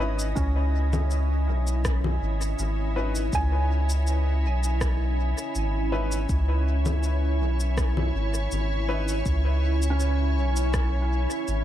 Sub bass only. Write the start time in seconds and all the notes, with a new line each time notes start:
Already playing: G#1
0.37 C#2
1.48 B1
2.22 G#1
2.59 G#1
3.33 C#2
4.44 B1
5.55 G#1
6.29 C#2
7.41 B1
8.15 G#1
8.52 G#1
9.26 C#2
10.37 B1
11.48 G#1